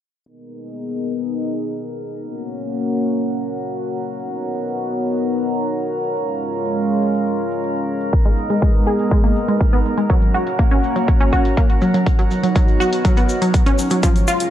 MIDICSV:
0, 0, Header, 1, 5, 480
1, 0, Start_track
1, 0, Tempo, 491803
1, 256, Time_signature, 4, 2, 24, 8
1, 14153, End_track
2, 0, Start_track
2, 0, Title_t, "Synth texture"
2, 0, Program_c, 0, 99
2, 254, Note_on_c, 0, 82, 81
2, 255, Note_on_c, 0, 70, 81
2, 14153, Note_off_c, 0, 70, 0
2, 14153, Note_off_c, 0, 82, 0
2, 14153, End_track
3, 0, Start_track
3, 0, Title_t, "Analog synth pad"
3, 0, Program_c, 1, 89
3, 255, Note_on_c, 1, 63, 65
3, 256, Note_on_c, 1, 59, 74
3, 256, Note_on_c, 1, 68, 66
3, 256, Note_on_c, 1, 70, 65
3, 256, Note_on_c, 1, 75, 83
3, 2156, Note_off_c, 1, 59, 0
3, 2156, Note_off_c, 1, 63, 0
3, 2156, Note_off_c, 1, 68, 0
3, 2156, Note_off_c, 1, 70, 0
3, 2156, Note_off_c, 1, 75, 0
3, 2175, Note_on_c, 1, 58, 76
3, 2175, Note_on_c, 1, 61, 69
3, 2175, Note_on_c, 1, 66, 67
3, 2175, Note_on_c, 1, 73, 67
3, 2175, Note_on_c, 1, 78, 81
3, 4076, Note_off_c, 1, 58, 0
3, 4076, Note_off_c, 1, 61, 0
3, 4095, Note_on_c, 1, 59, 75
3, 4095, Note_on_c, 1, 63, 67
3, 5977, Note_off_c, 1, 66, 0
3, 5977, Note_off_c, 1, 78, 0
3, 5996, Note_off_c, 1, 59, 0
3, 5996, Note_off_c, 1, 63, 0
3, 6015, Note_on_c, 1, 61, 68
3, 6015, Note_on_c, 1, 77, 81
3, 6016, Note_on_c, 1, 56, 75
3, 6016, Note_on_c, 1, 65, 68
3, 7896, Note_off_c, 1, 73, 0
3, 7916, Note_off_c, 1, 56, 0
3, 7916, Note_off_c, 1, 61, 0
3, 7916, Note_off_c, 1, 65, 0
3, 7916, Note_off_c, 1, 77, 0
3, 7935, Note_on_c, 1, 56, 75
3, 7935, Note_on_c, 1, 59, 68
3, 7935, Note_on_c, 1, 63, 67
3, 7935, Note_on_c, 1, 70, 68
3, 7935, Note_on_c, 1, 75, 82
3, 9836, Note_off_c, 1, 56, 0
3, 9836, Note_off_c, 1, 59, 0
3, 9836, Note_off_c, 1, 63, 0
3, 9836, Note_off_c, 1, 70, 0
3, 9836, Note_off_c, 1, 75, 0
3, 9854, Note_on_c, 1, 58, 75
3, 9855, Note_on_c, 1, 61, 67
3, 9855, Note_on_c, 1, 66, 68
3, 9855, Note_on_c, 1, 73, 68
3, 9855, Note_on_c, 1, 78, 80
3, 11756, Note_off_c, 1, 58, 0
3, 11756, Note_off_c, 1, 61, 0
3, 11756, Note_off_c, 1, 66, 0
3, 11756, Note_off_c, 1, 73, 0
3, 11775, Note_on_c, 1, 59, 73
3, 11775, Note_on_c, 1, 63, 70
3, 11775, Note_on_c, 1, 66, 70
3, 11775, Note_on_c, 1, 73, 70
3, 13657, Note_off_c, 1, 78, 0
3, 13676, Note_off_c, 1, 59, 0
3, 13676, Note_off_c, 1, 63, 0
3, 13676, Note_off_c, 1, 66, 0
3, 13696, Note_on_c, 1, 56, 74
3, 13696, Note_on_c, 1, 61, 68
3, 13696, Note_on_c, 1, 65, 67
3, 13696, Note_on_c, 1, 77, 85
3, 14153, Note_off_c, 1, 56, 0
3, 14153, Note_off_c, 1, 61, 0
3, 14153, Note_off_c, 1, 65, 0
3, 14153, Note_off_c, 1, 73, 0
3, 14153, Note_off_c, 1, 77, 0
3, 14153, End_track
4, 0, Start_track
4, 0, Title_t, "Synth pluck"
4, 0, Program_c, 2, 84
4, 8056, Note_on_c, 2, 56, 72
4, 8125, Note_off_c, 2, 56, 0
4, 8296, Note_on_c, 2, 56, 72
4, 8338, Note_off_c, 2, 56, 0
4, 8415, Note_on_c, 2, 56, 80
4, 8521, Note_off_c, 2, 56, 0
4, 8655, Note_on_c, 2, 68, 98
4, 8726, Note_off_c, 2, 68, 0
4, 8895, Note_on_c, 2, 56, 97
4, 8937, Note_off_c, 2, 56, 0
4, 9016, Note_on_c, 2, 58, 73
4, 9086, Note_off_c, 2, 58, 0
4, 9256, Note_on_c, 2, 56, 70
4, 9298, Note_off_c, 2, 56, 0
4, 9496, Note_on_c, 2, 59, 98
4, 9600, Note_off_c, 2, 59, 0
4, 9736, Note_on_c, 2, 56, 75
4, 9805, Note_off_c, 2, 56, 0
4, 9855, Note_on_c, 2, 54, 97
4, 9897, Note_off_c, 2, 54, 0
4, 10095, Note_on_c, 2, 66, 94
4, 10166, Note_off_c, 2, 66, 0
4, 10335, Note_on_c, 2, 58, 83
4, 10406, Note_off_c, 2, 58, 0
4, 10456, Note_on_c, 2, 61, 96
4, 10560, Note_off_c, 2, 61, 0
4, 10696, Note_on_c, 2, 54, 76
4, 10765, Note_off_c, 2, 54, 0
4, 10936, Note_on_c, 2, 61, 98
4, 11005, Note_off_c, 2, 61, 0
4, 11055, Note_on_c, 2, 66, 94
4, 11126, Note_off_c, 2, 66, 0
4, 11295, Note_on_c, 2, 58, 81
4, 11366, Note_off_c, 2, 58, 0
4, 11535, Note_on_c, 2, 54, 72
4, 11606, Note_off_c, 2, 54, 0
4, 11656, Note_on_c, 2, 54, 76
4, 11725, Note_off_c, 2, 54, 0
4, 11897, Note_on_c, 2, 54, 74
4, 11966, Note_off_c, 2, 54, 0
4, 12136, Note_on_c, 2, 54, 71
4, 12178, Note_off_c, 2, 54, 0
4, 12255, Note_on_c, 2, 54, 83
4, 12361, Note_off_c, 2, 54, 0
4, 12495, Note_on_c, 2, 66, 97
4, 12566, Note_off_c, 2, 66, 0
4, 12736, Note_on_c, 2, 54, 100
4, 12778, Note_off_c, 2, 54, 0
4, 12857, Note_on_c, 2, 59, 76
4, 12926, Note_off_c, 2, 59, 0
4, 13096, Note_on_c, 2, 54, 73
4, 13138, Note_off_c, 2, 54, 0
4, 13336, Note_on_c, 2, 61, 99
4, 13440, Note_off_c, 2, 61, 0
4, 13576, Note_on_c, 2, 54, 76
4, 13645, Note_off_c, 2, 54, 0
4, 13695, Note_on_c, 2, 53, 98
4, 13738, Note_off_c, 2, 53, 0
4, 13936, Note_on_c, 2, 65, 95
4, 14006, Note_off_c, 2, 65, 0
4, 14153, End_track
5, 0, Start_track
5, 0, Title_t, "Drums"
5, 256, Note_on_c, 9, 42, 59
5, 353, Note_off_c, 9, 42, 0
5, 376, Note_on_c, 9, 42, 34
5, 474, Note_off_c, 9, 42, 0
5, 617, Note_on_c, 9, 42, 48
5, 714, Note_off_c, 9, 42, 0
5, 735, Note_on_c, 9, 42, 62
5, 833, Note_off_c, 9, 42, 0
5, 1097, Note_on_c, 9, 42, 50
5, 1194, Note_off_c, 9, 42, 0
5, 1215, Note_on_c, 9, 42, 61
5, 1313, Note_off_c, 9, 42, 0
5, 1336, Note_on_c, 9, 42, 34
5, 1434, Note_off_c, 9, 42, 0
5, 1577, Note_on_c, 9, 42, 49
5, 1674, Note_off_c, 9, 42, 0
5, 1696, Note_on_c, 9, 42, 59
5, 1793, Note_off_c, 9, 42, 0
5, 1817, Note_on_c, 9, 42, 33
5, 1914, Note_off_c, 9, 42, 0
5, 2056, Note_on_c, 9, 42, 49
5, 2154, Note_off_c, 9, 42, 0
5, 2175, Note_on_c, 9, 42, 59
5, 2273, Note_off_c, 9, 42, 0
5, 2297, Note_on_c, 9, 42, 33
5, 2394, Note_off_c, 9, 42, 0
5, 2537, Note_on_c, 9, 42, 48
5, 2634, Note_off_c, 9, 42, 0
5, 2656, Note_on_c, 9, 42, 61
5, 2753, Note_off_c, 9, 42, 0
5, 3017, Note_on_c, 9, 42, 49
5, 3115, Note_off_c, 9, 42, 0
5, 3135, Note_on_c, 9, 42, 59
5, 3233, Note_off_c, 9, 42, 0
5, 3257, Note_on_c, 9, 42, 33
5, 3354, Note_off_c, 9, 42, 0
5, 3496, Note_on_c, 9, 42, 46
5, 3594, Note_off_c, 9, 42, 0
5, 3615, Note_on_c, 9, 42, 57
5, 3713, Note_off_c, 9, 42, 0
5, 3737, Note_on_c, 9, 42, 33
5, 3834, Note_off_c, 9, 42, 0
5, 3976, Note_on_c, 9, 42, 48
5, 4074, Note_off_c, 9, 42, 0
5, 4095, Note_on_c, 9, 42, 58
5, 4193, Note_off_c, 9, 42, 0
5, 4217, Note_on_c, 9, 42, 33
5, 4314, Note_off_c, 9, 42, 0
5, 4456, Note_on_c, 9, 42, 46
5, 4554, Note_off_c, 9, 42, 0
5, 4575, Note_on_c, 9, 42, 58
5, 4673, Note_off_c, 9, 42, 0
5, 4936, Note_on_c, 9, 42, 47
5, 5034, Note_off_c, 9, 42, 0
5, 5055, Note_on_c, 9, 42, 57
5, 5153, Note_off_c, 9, 42, 0
5, 5176, Note_on_c, 9, 42, 32
5, 5274, Note_off_c, 9, 42, 0
5, 5416, Note_on_c, 9, 42, 45
5, 5514, Note_off_c, 9, 42, 0
5, 5535, Note_on_c, 9, 42, 57
5, 5633, Note_off_c, 9, 42, 0
5, 5656, Note_on_c, 9, 42, 31
5, 5753, Note_off_c, 9, 42, 0
5, 5896, Note_on_c, 9, 42, 46
5, 5994, Note_off_c, 9, 42, 0
5, 6015, Note_on_c, 9, 42, 56
5, 6113, Note_off_c, 9, 42, 0
5, 6137, Note_on_c, 9, 42, 31
5, 6234, Note_off_c, 9, 42, 0
5, 6377, Note_on_c, 9, 42, 45
5, 6474, Note_off_c, 9, 42, 0
5, 6495, Note_on_c, 9, 42, 58
5, 6593, Note_off_c, 9, 42, 0
5, 6857, Note_on_c, 9, 42, 46
5, 6954, Note_off_c, 9, 42, 0
5, 6975, Note_on_c, 9, 42, 55
5, 7073, Note_off_c, 9, 42, 0
5, 7097, Note_on_c, 9, 42, 32
5, 7194, Note_off_c, 9, 42, 0
5, 7337, Note_on_c, 9, 42, 45
5, 7434, Note_off_c, 9, 42, 0
5, 7455, Note_on_c, 9, 42, 55
5, 7553, Note_off_c, 9, 42, 0
5, 7577, Note_on_c, 9, 42, 31
5, 7674, Note_off_c, 9, 42, 0
5, 7817, Note_on_c, 9, 42, 46
5, 7914, Note_off_c, 9, 42, 0
5, 7933, Note_on_c, 9, 69, 44
5, 7935, Note_on_c, 9, 36, 106
5, 7935, Note_on_c, 9, 42, 57
5, 8031, Note_off_c, 9, 69, 0
5, 8032, Note_off_c, 9, 36, 0
5, 8033, Note_off_c, 9, 42, 0
5, 8057, Note_on_c, 9, 42, 31
5, 8154, Note_off_c, 9, 42, 0
5, 8172, Note_on_c, 9, 69, 88
5, 8270, Note_off_c, 9, 69, 0
5, 8295, Note_on_c, 9, 69, 36
5, 8296, Note_on_c, 9, 42, 47
5, 8393, Note_off_c, 9, 69, 0
5, 8394, Note_off_c, 9, 42, 0
5, 8415, Note_on_c, 9, 36, 113
5, 8415, Note_on_c, 9, 42, 57
5, 8421, Note_on_c, 9, 69, 49
5, 8512, Note_off_c, 9, 36, 0
5, 8512, Note_off_c, 9, 42, 0
5, 8519, Note_off_c, 9, 69, 0
5, 8541, Note_on_c, 9, 69, 35
5, 8639, Note_off_c, 9, 69, 0
5, 8663, Note_on_c, 9, 69, 84
5, 8760, Note_off_c, 9, 69, 0
5, 8776, Note_on_c, 9, 42, 46
5, 8782, Note_on_c, 9, 69, 31
5, 8874, Note_off_c, 9, 42, 0
5, 8880, Note_off_c, 9, 69, 0
5, 8895, Note_on_c, 9, 36, 108
5, 8895, Note_on_c, 9, 42, 55
5, 8907, Note_on_c, 9, 69, 50
5, 8992, Note_off_c, 9, 36, 0
5, 8993, Note_off_c, 9, 42, 0
5, 9005, Note_off_c, 9, 69, 0
5, 9016, Note_on_c, 9, 42, 32
5, 9018, Note_on_c, 9, 69, 35
5, 9114, Note_off_c, 9, 42, 0
5, 9116, Note_off_c, 9, 69, 0
5, 9138, Note_on_c, 9, 69, 91
5, 9235, Note_off_c, 9, 69, 0
5, 9255, Note_on_c, 9, 69, 34
5, 9256, Note_on_c, 9, 42, 46
5, 9353, Note_off_c, 9, 69, 0
5, 9354, Note_off_c, 9, 42, 0
5, 9375, Note_on_c, 9, 36, 109
5, 9375, Note_on_c, 9, 42, 58
5, 9381, Note_on_c, 9, 69, 51
5, 9473, Note_off_c, 9, 36, 0
5, 9473, Note_off_c, 9, 42, 0
5, 9479, Note_off_c, 9, 69, 0
5, 9495, Note_on_c, 9, 69, 36
5, 9496, Note_on_c, 9, 42, 31
5, 9592, Note_off_c, 9, 69, 0
5, 9594, Note_off_c, 9, 42, 0
5, 9615, Note_on_c, 9, 69, 76
5, 9712, Note_off_c, 9, 69, 0
5, 9736, Note_on_c, 9, 42, 46
5, 9742, Note_on_c, 9, 69, 38
5, 9834, Note_off_c, 9, 42, 0
5, 9840, Note_off_c, 9, 69, 0
5, 9855, Note_on_c, 9, 36, 103
5, 9855, Note_on_c, 9, 42, 61
5, 9857, Note_on_c, 9, 69, 44
5, 9953, Note_off_c, 9, 36, 0
5, 9953, Note_off_c, 9, 42, 0
5, 9955, Note_off_c, 9, 69, 0
5, 9976, Note_on_c, 9, 42, 33
5, 10074, Note_off_c, 9, 42, 0
5, 10097, Note_on_c, 9, 69, 80
5, 10194, Note_off_c, 9, 69, 0
5, 10216, Note_on_c, 9, 42, 49
5, 10225, Note_on_c, 9, 69, 32
5, 10314, Note_off_c, 9, 42, 0
5, 10322, Note_off_c, 9, 69, 0
5, 10333, Note_on_c, 9, 69, 42
5, 10335, Note_on_c, 9, 36, 109
5, 10335, Note_on_c, 9, 42, 63
5, 10431, Note_off_c, 9, 69, 0
5, 10433, Note_off_c, 9, 36, 0
5, 10433, Note_off_c, 9, 42, 0
5, 10450, Note_on_c, 9, 69, 31
5, 10547, Note_off_c, 9, 69, 0
5, 10576, Note_on_c, 9, 69, 82
5, 10674, Note_off_c, 9, 69, 0
5, 10696, Note_on_c, 9, 42, 49
5, 10699, Note_on_c, 9, 69, 33
5, 10794, Note_off_c, 9, 42, 0
5, 10797, Note_off_c, 9, 69, 0
5, 10812, Note_on_c, 9, 69, 42
5, 10815, Note_on_c, 9, 36, 107
5, 10815, Note_on_c, 9, 42, 58
5, 10909, Note_off_c, 9, 69, 0
5, 10913, Note_off_c, 9, 36, 0
5, 10913, Note_off_c, 9, 42, 0
5, 10933, Note_on_c, 9, 69, 30
5, 10936, Note_on_c, 9, 42, 33
5, 11031, Note_off_c, 9, 69, 0
5, 11034, Note_off_c, 9, 42, 0
5, 11054, Note_on_c, 9, 69, 84
5, 11055, Note_on_c, 9, 36, 56
5, 11152, Note_off_c, 9, 36, 0
5, 11152, Note_off_c, 9, 69, 0
5, 11176, Note_on_c, 9, 42, 48
5, 11178, Note_on_c, 9, 69, 37
5, 11274, Note_off_c, 9, 42, 0
5, 11276, Note_off_c, 9, 69, 0
5, 11293, Note_on_c, 9, 69, 45
5, 11295, Note_on_c, 9, 36, 107
5, 11295, Note_on_c, 9, 42, 58
5, 11391, Note_off_c, 9, 69, 0
5, 11392, Note_off_c, 9, 42, 0
5, 11393, Note_off_c, 9, 36, 0
5, 11414, Note_on_c, 9, 69, 32
5, 11416, Note_on_c, 9, 42, 33
5, 11511, Note_off_c, 9, 69, 0
5, 11514, Note_off_c, 9, 42, 0
5, 11531, Note_on_c, 9, 69, 76
5, 11629, Note_off_c, 9, 69, 0
5, 11654, Note_on_c, 9, 69, 38
5, 11656, Note_on_c, 9, 42, 49
5, 11752, Note_off_c, 9, 69, 0
5, 11754, Note_off_c, 9, 42, 0
5, 11775, Note_on_c, 9, 36, 101
5, 11775, Note_on_c, 9, 42, 63
5, 11778, Note_on_c, 9, 69, 49
5, 11872, Note_off_c, 9, 36, 0
5, 11872, Note_off_c, 9, 42, 0
5, 11875, Note_off_c, 9, 69, 0
5, 11896, Note_on_c, 9, 42, 36
5, 11994, Note_off_c, 9, 42, 0
5, 12013, Note_on_c, 9, 69, 83
5, 12111, Note_off_c, 9, 69, 0
5, 12136, Note_on_c, 9, 42, 50
5, 12143, Note_on_c, 9, 69, 32
5, 12234, Note_off_c, 9, 42, 0
5, 12241, Note_off_c, 9, 69, 0
5, 12252, Note_on_c, 9, 69, 50
5, 12255, Note_on_c, 9, 36, 107
5, 12255, Note_on_c, 9, 42, 66
5, 12349, Note_off_c, 9, 69, 0
5, 12352, Note_off_c, 9, 36, 0
5, 12353, Note_off_c, 9, 42, 0
5, 12376, Note_on_c, 9, 69, 30
5, 12473, Note_off_c, 9, 69, 0
5, 12501, Note_on_c, 9, 69, 85
5, 12599, Note_off_c, 9, 69, 0
5, 12616, Note_on_c, 9, 42, 51
5, 12619, Note_on_c, 9, 69, 36
5, 12714, Note_off_c, 9, 42, 0
5, 12717, Note_off_c, 9, 69, 0
5, 12735, Note_on_c, 9, 36, 105
5, 12735, Note_on_c, 9, 42, 60
5, 12735, Note_on_c, 9, 69, 44
5, 12832, Note_off_c, 9, 36, 0
5, 12833, Note_off_c, 9, 42, 0
5, 12833, Note_off_c, 9, 69, 0
5, 12853, Note_on_c, 9, 69, 35
5, 12856, Note_on_c, 9, 42, 35
5, 12950, Note_off_c, 9, 69, 0
5, 12954, Note_off_c, 9, 42, 0
5, 12972, Note_on_c, 9, 69, 82
5, 13070, Note_off_c, 9, 69, 0
5, 13095, Note_on_c, 9, 69, 32
5, 13096, Note_on_c, 9, 42, 49
5, 13193, Note_off_c, 9, 69, 0
5, 13194, Note_off_c, 9, 42, 0
5, 13214, Note_on_c, 9, 69, 45
5, 13215, Note_on_c, 9, 36, 104
5, 13215, Note_on_c, 9, 42, 64
5, 13312, Note_off_c, 9, 36, 0
5, 13312, Note_off_c, 9, 69, 0
5, 13313, Note_off_c, 9, 42, 0
5, 13335, Note_on_c, 9, 69, 30
5, 13336, Note_on_c, 9, 42, 35
5, 13432, Note_off_c, 9, 69, 0
5, 13434, Note_off_c, 9, 42, 0
5, 13454, Note_on_c, 9, 69, 86
5, 13551, Note_off_c, 9, 69, 0
5, 13569, Note_on_c, 9, 69, 34
5, 13576, Note_on_c, 9, 42, 51
5, 13666, Note_off_c, 9, 69, 0
5, 13674, Note_off_c, 9, 42, 0
5, 13694, Note_on_c, 9, 69, 50
5, 13695, Note_on_c, 9, 36, 104
5, 13695, Note_on_c, 9, 42, 66
5, 13792, Note_off_c, 9, 36, 0
5, 13792, Note_off_c, 9, 69, 0
5, 13793, Note_off_c, 9, 42, 0
5, 13817, Note_on_c, 9, 42, 36
5, 13824, Note_on_c, 9, 69, 33
5, 13915, Note_off_c, 9, 42, 0
5, 13922, Note_off_c, 9, 69, 0
5, 13933, Note_on_c, 9, 69, 84
5, 14031, Note_off_c, 9, 69, 0
5, 14054, Note_on_c, 9, 69, 36
5, 14057, Note_on_c, 9, 42, 52
5, 14152, Note_off_c, 9, 69, 0
5, 14153, Note_off_c, 9, 42, 0
5, 14153, End_track
0, 0, End_of_file